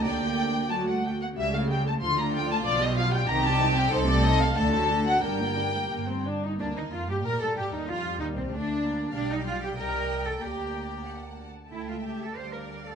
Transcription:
<<
  \new Staff \with { instrumentName = "Violin section" } { \time 2/4 \key g \minor \tempo 4 = 93 g''4 a''16 fis''16 g''16 fis''16 | e''16 f''16 g''16 a''16 c'''16 bes''16 g''16 a''16 | d''16 ees''16 f''16 g''16 bes''16 a''8 g''16 | c''16 d''16 ees''16 f''16 a''8. fis''16 |
g''4. r8 | d'16 ees'16 f'16 g'16 bes'16 a'16 g'16 ees'16 | f'8 ees'16 c'16 d'4 | g''2 |
bes''4 a''4~ | a''2 | }
  \new Staff \with { instrumentName = "Violin section" } { \time 2/4 \key g \minor << { d''4. r8 | r4 f'4~ | f'4 g'4 | a'4 a'4 |
bes'4. r8 | d'16 ees'16 f'16 g'16 bes'16 a'16 g'16 ees'16 | f'8 ees'16 c'16 d'4 | g''2~ |
g''4 fis''8 r8 | g''4 f''4 | } \\ { r2 | r2 | r2 | r2 |
r2 | r2 | r2 | f''4 ees''4 |
d''4. r8 | e''4 d''4 | } >> }
  \new Staff \with { instrumentName = "Cello section" } { \time 2/4 \key g \minor d4 fis16 g16 a16 bes16 | cis4 d4 | b,4 c4 | c4 d4 |
g,4 g,4 | d'16 ees'16 f'16 g'16 bes'16 a'16 g'16 ees'16 | f'8 ees'16 c'16 d'4 | d'16 ees'16 f'16 g'16 bes'8. a'16 |
g'4 r4 | e'16 f'16 g'16 a'16 c''16 bes'8 a'16 | }
  \new Staff \with { instrumentName = "Viola section" } { \time 2/4 \key g \minor <bes g'>4 <a fis'>8. r16 | <g g'>16 <a a'>16 <g g'>16 <a a'>16 <f f'>16 <a d'>16 <f f'>16 <a d'>16 | <f f'>16 <g g'>16 <f f'>16 <g g'>16 <ees ees'>16 <g c'>16 <ees ees'>16 <g c'>16 | <c' ees'>16 <a c'>16 <c' ees'>16 <a c'>16 <a d'>16 <fis fis'>16 <a d'>16 <fis fis'>16 |
<g d'>16 <bes g'>16 <g d'>16 <bes g'>16 bes16 c'16 d'16 ees'16 | bes4 g4~ | g4 a8 bes8 | g4 g4 |
bes4. r8 | a4 g4 | }
  \new Staff \with { instrumentName = "Double bass section" } { \clef bass \time 2/4 \key g \minor d,4 d,8 r8 | cis,4 d,4 | b,,4 c,4 | c,4 d,4 |
g,,4 g,,4 | d,16 ees,16 f,16 g,16 bes,16 a,16 g,16 ees,16 | f,8 ees,16 c,16 d,4 | b,,4 c,4 |
d,4. r8 | cis,4 d,4 | }
>>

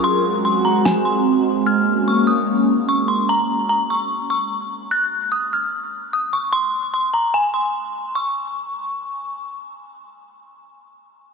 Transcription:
<<
  \new Staff \with { instrumentName = "Synth bell" } { \time 4/4 \key bes \minor \tempo 4 = 148 c'''4 c'''8 bes''8 aes''8 c'''4. | f'''4 des'''8 ees'''8 r4 des'''8 c'''8 | bes''4 bes''8 des'''4 des'''8 r4 | ges'''4 ees'''8 f'''8 r4 ees'''8 des'''8 |
c'''4 c'''8 bes''8 aes''8 c'''4. | des'''2. r4 | r1 | }
  \new Staff \with { instrumentName = "Analog synth pad" } { \time 4/4 \key bes \minor << { <c' ges'>1 | <bes des'>1 | r1 | r1 |
r1 | r1 | r1 | } \\ { aes1~ | aes1 | r1 | r1 |
r1 | r1 | r1 | } >> }
  \new DrumStaff \with { instrumentName = "Drums" } \drummode { \time 4/4 r4 r4 sn4 r4 | r4 r4 r4 r4 | r4 r4 r4 r4 | r4 r4 r4 r4 |
r4 r4 r4 r4 | r4 r4 r4 r4 | r4 r4 r4 r4 | }
>>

